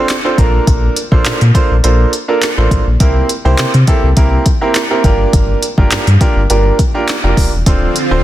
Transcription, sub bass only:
0.38 A#1
0.67 A#1
1.12 A#1
1.26 A#2
1.41 A#2
1.71 A#1
1.84 A#1
2.58 A1
2.71 A1
2.87 A#1
3.00 C2
3.45 C2
3.59 C3
3.74 C3
4.03 C2
4.17 C2
5.04 G1
5.33 G1
5.78 G1
5.92 G2
6.07 G2
6.36 G1
6.50 G1
7.24 F1
7.37 D1
7.53 E1
7.67 D1
8.11 D1

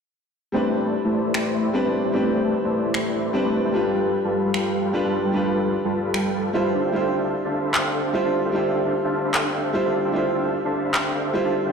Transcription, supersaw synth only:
0.54 A3 E4 B4 C5 D5 G5
0.74 A3 E4 B4 C5 D5 G5
0.85 A3 E4 B4 C5 D5 A5
1.05 A3 E4 B4 C5 D5 A5
1.25 A3 E4 B4 C5 D5 B5
1.34 A3 E4 B4 C5 D5 G5
1.54 A3 E4 B4 C5 D5 E5
1.64 A3 E4 B4 C5 D5 G5
1.84 A3 E4 B4 C5 D5 A5
2.05 A3 E4 B4 C5 D5 G5
2.14 A3 E4 B4 C5 D5 G5
2.34 A3 E4 B4 C5 D5 G5
2.44 A3 E4 B4 C5 D5 A5
2.64 A3 E4 B4 C5 D5 A5
2.84 A3 E4 B4 C5 D5 B5
2.94 A3 E4 B4 C5 D5 G5
3.14 A3 E4 B4 C5 D5 E5
3.24 A3 E4 B4 C5 D5 G5
3.45 A3 E4 B4 C5 D5 A5
3.64 A3 E4 B4 C5 D5 G5
3.74 G3 F4 A4 B4 G5
3.94 G3 F4 A4 B4 G5
4.05 G3 F4 A4 B4 A5
4.24 G3 F4 A4 B4 A5
4.44 G3 F4 A4 B4 B5
4.54 G3 F4 A4 B4 G5
4.74 G3 F4 A4 B4 F5
4.84 G3 F4 A4 B4 G5
5.05 G3 F4 A4 B4 A5
5.25 G3 F4 A4 B4 G5
5.34 G3 F4 A4 B4 G5
5.54 G3 F4 A4 B4 G5
5.65 G3 F4 A4 B4 A5
5.85 G3 F4 A4 B4 A5
6.05 G3 F4 A4 B4 B5
6.14 G3 F4 A4 B4 G5
6.34 G3 F4 A4 B4 A5
6.54 G3 F4 A4 B4 F5
6.74 D4 A4 C5 E5 F5 A5
6.85 D4 A4 C5 E5 F5 G5
6.94 D4 A4 C5 E5 F5 G5
7.14 D4 A4 C5 E5 F5 G5
7.24 D4 A4 C5 E5 F5 A5
7.45 D4 A4 C5 E5 F5 A5
7.64 D4 A4 C5 E5 F5 B5
7.74 D4 A4 C5 E5 F5 G5
7.94 D4 A4 C5 E5 F5 G5
8.04 D4 A4 C5 E5 F5 G5
8.25 D4 A4 C5 E5 F5 A5
8.45 D4 A4 C5 E5 F5 G5
8.54 D4 A4 C5 E5 F5 G5
8.74 D4 A4 C5 E5 F5 G5
8.84 D4 A4 C5 E5 F5 A5
9.04 D4 A4 C5 E5 F5 A5
9.25 D4 A4 C5 E5 F5 B5
9.34 A4 C5 E5 F5 G5
9.54 D4 A4 C5 E5 F5 G5
9.65 D4 A4 C5 E5 F5 G5
9.85 D4 A4 C5 E5 F5 A5
10.05 D4 A4 C5 E5 F5 G5
10.14 D4 A4 C5 E5 F5 G5
10.34 D4 A4 C5 E5 F5 G5
10.45 D4 A4 C5 E5 F5 A5
10.65 D4 A4 C5 E5 F5 A5
10.85 D4 A4 C5 E5 F5 B5
10.94 D4 A4 C5 E5 F5 G5
11.14 D4 A4 C5 E5 F5 G5
11.25 D4 A4 C5 E5 F5 G5
11.45 D4 A4 C5 E5 F5 A5
11.65 D4 A4 C5 E5 F5 G5

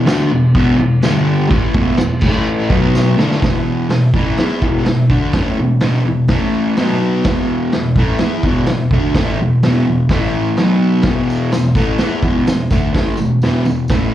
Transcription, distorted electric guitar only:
0.06 D3 A3 D4
0.31 E2 B2
0.55 E2 B2 E3
0.78 E2 B2
1.03 G2 D3 G3
1.49 A2 E3 A3
1.75 E2 B2 E3
1.99 E2 B2
2.22 A2 E3 A3
2.70 B2 F#3 B3
3.17 D3 A3 D4
3.40 E2 B2 E3
3.90 E2 B2
4.15 A2 E3 A3
4.39 E3 B3 E4
4.62 E2 B2 E3
4.85 E2 B2
5.11 D3 A3 D4
5.35 A2 E3 A3
5.58 E2 B2
5.81 E2 B2 E3
6.04 E2 B2
6.29 A2 E3 A3
6.78 B2 F#3 B3
7.26 E2 B2 E3
7.74 E2 B2
7.97 A2 E3 A3
8.20 E3 B3 E4
8.45 E2 B2 E3
8.69 E2 B2
8.93 D3 A3 D4
9.15 A2 E3 A3
9.41 E2 B2
9.63 E2 B2 E3
9.87 E2 B2
10.11 A2 E3 A3
10.59 B2 F#3 B3
11.05 E2 B2 E3
11.54 E2 B2
11.76 A2 E3 A3
12.00 E3 B3 E4
12.24 E2 B2 E3
12.48 E2 B2
12.72 D3 A3 D4
12.94 A2 E3 A3
13.18 E2 B2
13.43 E2 B2 E3
13.66 E2 B2
13.90 A2 E3 A3

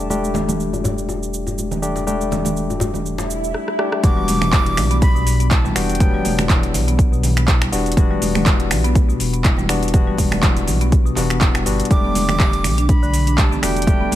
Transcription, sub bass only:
Already playing: E1
4.03 E1
4.77 B1
5.76 E1
6.25 E1
6.74 B1
7.73 E1
8.22 E1
8.71 B1
9.20 E1
10.18 E1
10.67 B1
11.17 E1
11.66 G1
11.91 E1
12.64 B1
13.63 E1
14.12 E1

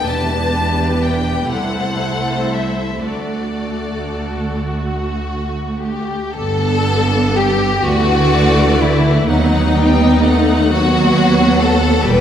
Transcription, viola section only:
0.08 B3 D4
1.49 A3 E4
3.05 A3 F#4
6.35 D3 B3
7.85 E3 A3
9.29 F#3 B3
9.76 G3
10.24 A3
10.71 F#3 B3
12.04 G3

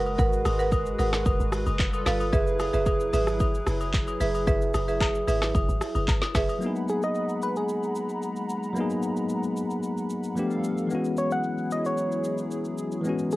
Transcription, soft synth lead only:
6.90 G#4
7.04 D#5
7.43 B4
7.57 G#4
11.18 C#5
11.32 F#5
11.72 D#5
11.86 C#5
13.33 G#4

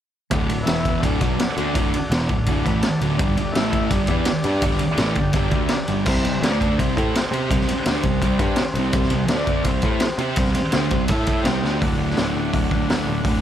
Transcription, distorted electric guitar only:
0.31 D2 A2 D3
0.50 D2 A2
0.67 E2 B2 E3
1.03 D2 A2 D3
1.22 B2 F#3 B3
1.40 muted distorted electric guitar stroke
1.58 D3 A3 D4
1.74 D2 A2 D3
1.95 muted distorted electric guitar stroke
2.11 E2 B2 E3
2.31 D2 A2
2.48 D2 A2 D3
2.66 A2 E3 A3
2.85 muted distorted electric guitar stroke
3.01 D2 A2 D3
3.19 G2 D3 G3
3.37 G2 D3
3.55 A2 E3 A3
3.91 G2 D3 G3
4.08 E3 B3 E4
4.28 muted distorted electric guitar stroke
4.44 G3 D4 G4
4.63 G2 D3 G3
4.81 muted distorted electric guitar stroke
4.99 A2 E3 A3
5.17 G2 D3
5.35 G2 D3 G3
5.53 D3 A3 D4
5.72 muted distorted electric guitar stroke
5.88 G2 D3 G3
6.07 C3 G3 C4
6.26 C3 G3
6.43 D3 A3 D4
6.79 C3 G3 C4
6.96 A3 E4 A4
7.16 muted distorted electric guitar stroke
7.31 C4 G4 C5
7.50 C3 G3 C4
7.68 muted distorted electric guitar stroke
7.86 D3 A3 D4
8.05 C3 G3
8.22 C3 G3 C4
8.39 G3 D4 G4
8.59 muted distorted electric guitar stroke
8.77 C3 G3 C4
8.94 C3 G3 C4
9.11 C3 G3
9.29 D3 A3 D4
9.64 C3 G3 C4
9.83 A3 E4 A4
10.01 muted distorted electric guitar stroke
10.19 C4 G4 C5
10.37 C3 G3 C4
10.56 muted distorted electric guitar stroke
10.73 D3 A3 D4
10.93 C3 G3
11.11 A3 E4 A4
11.47 C3 G3 C4
11.65 D3 A3 D4
11.81 D2 A2
11.86 D3
12.16 D2 A2
12.21 D3
12.70 D3
12.75 A2
12.88 D2 A2
12.93 D3
13.07 D3
13.11 A2
13.23 D2 A2
13.28 D3

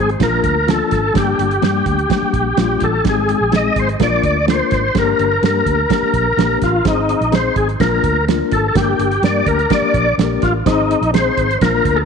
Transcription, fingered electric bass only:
Already playing: G#1
0.20 A#1
0.43 D2
0.92 G#1
1.15 G1
1.39 G1
1.63 G2
1.86 D2
2.22 muted fingered electric bass stroke
2.34 A#1
2.58 A#1
2.82 A1
3.05 G#1
3.41 A#1
3.76 G#1
4.00 A#1
4.23 D2
4.72 G#1
4.95 G1
5.19 G1
5.43 G2
5.66 D2
6.02 muted fingered electric bass stroke
6.14 A#1
6.37 A#1
6.62 A1
6.86 G#1
7.21 A#1
7.56 G#1
7.80 A#1
8.04 D2
8.52 G#1
8.76 G1
8.99 G1
9.23 G2
9.46 D2
9.82 muted fingered electric bass stroke
9.94 A#1
10.18 A#1
10.43 A1
10.66 G#1
11.01 A#1
11.37 G#1
11.62 A#1
11.85 D2

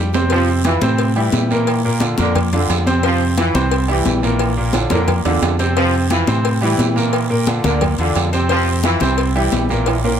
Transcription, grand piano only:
0.14 C3 C4 C5
0.32 C3 C4 C5
0.66 E3 E4 F4
0.82 C3 C4 C5
1.17 G3 E4 G4
1.51 A#2 A#3 A#4
1.85 A#2 A#3 A#4
2.01 D3 D4 F4
2.19 A#2 A#3 A#4
2.53 D3 D4 F4
2.86 C3 C4 C5
3.03 C3 C4 C5
3.37 E3 E4 F4
3.54 C3 C4 C5
3.88 G3 E4 G4
4.23 A#2 A#3 A#4
4.57 A#2 A#3 A#4
4.75 D3 D4 F4
4.91 A#2 A#3 A#4
5.25 D3 D4 F4
5.59 C3 C4 C5
5.76 C3 C4 C5
6.11 E3 E4 F4
6.28 C3 C4 C5
6.62 G3 E4 G4
6.96 A#2 A#3 A#4
7.30 A#2 A#3 A#4
7.47 D3 D4 F4
7.64 A#2 A#3 A#4
8.00 D3 D4 F4
8.33 C3 C4 C5
8.49 C3 C4 C5
8.85 E3 E4 F4
9.01 C3 C4 C5
9.35 G3 E4 G4
9.70 A#2 A#3 A#4
10.04 A#2 A#3 A#4

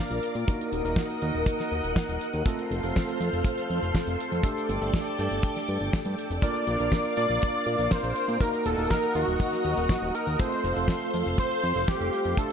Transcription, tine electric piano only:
Already playing: A#3 D4 F4 A#4
0.48 A#3 D#4 F#4 A#4
0.85 A#3 D#4 F#4 A#4
1.22 A#3 D#4 F#4 A#4
2.46 A3 C4 F4 A4
2.83 A3 C4 F4 A4
3.21 A3 C4 F4 A4
4.44 A3 D4 G4 A4
4.82 A3 D4 G4 A4
5.19 A3 D4 G4 A4
6.43 A#3 D4 F4 A#4
6.80 A#3 D4 F4 A#4
7.17 A#3 D4 F4 A#4
8.41 A#3 D#4 F#4 A#4
8.78 A#3 D#4 F#4 A#4
9.15 A#3 D#4 F#4 A#4
10.39 A3 C4 F4 A4
10.77 A3 C4 F4 A4
11.14 A3 C4 F4 A4
12.38 A3 D4 G4 A4

